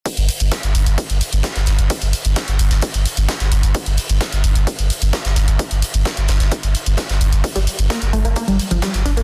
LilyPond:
<<
  \new Staff \with { instrumentName = "Synth arpeggio sound" } { \time 4/4 \key g \minor \tempo 4 = 130 r1 | r1 | r1 | r1 |
r16 g16 r8 bes16 r16 a16 bes16 bes16 g16 r16 f16 g16 r16 d'16 bes16 | }
  \new Staff \with { instrumentName = "Sub bass" } { \clef bass \time 4/4 \key g \minor r16 g,,16 r16 g,,16 r16 g,,16 g,,16 g,,16 r16 g,,16 r16 g,,16 r16 g,,16 g,,16 g,,16 | r16 g,,16 r16 g,,16 r16 g,,16 g,,16 g,,16 r16 g,,16 r16 g,,16 r16 g,,16 g,,16 g,,16 | r16 g,,16 r16 g,,16 r16 g,,16 g,,16 g,,16 r16 g,,16 r16 g,,16 r16 g,,16 g,,16 g,,16 | r16 g,,16 r16 g,,16 r16 g,,16 g,,16 g,,16 r16 g,,16 r16 g,,16 r16 g,,16 g,,16 g,,16 |
r16 g,,16 r16 g,,16 r16 g,,16 g,,16 g,,16 r16 g,,16 r16 g,,16 r16 g,,16 g,,16 g,,16 | }
  \new DrumStaff \with { instrumentName = "Drums" } \drummode { \time 4/4 <hh bd>16 hh16 hh16 hh16 <hh bd sn>16 hh16 hh16 hh16 <hh bd>16 hh16 hh16 hh16 <hh bd sn>16 <hh sn>16 <hh sn>16 hh16 | <hh bd>16 hh16 hh16 hh16 <hh bd sn>16 hh16 hh16 <hh sn>16 <hh bd>16 hh16 hh16 hh16 <hh bd sn>16 <hh sn>16 hh16 hh16 | <hh bd>16 hh16 hh16 hh16 <hh bd sn>16 hh16 hh16 hh16 <hh bd>16 hh16 hh16 hh16 <hh bd sn>16 <hh sn>16 <hh sn>16 hh16 | <hh bd>16 hh16 hh16 hh16 <hh bd sn>16 hh16 <hh sn>16 <hh sn>16 <hh bd>16 hh16 hh16 hh16 <hh bd sn>16 <hh sn>16 hh16 hh16 |
<hh bd>16 hh16 hh16 hh16 <hh bd sn>16 hh16 hh16 hh16 <hh bd>16 hh16 hh16 hh16 <hh bd sn>16 <hh sn>16 <hh sn>16 hh16 | }
>>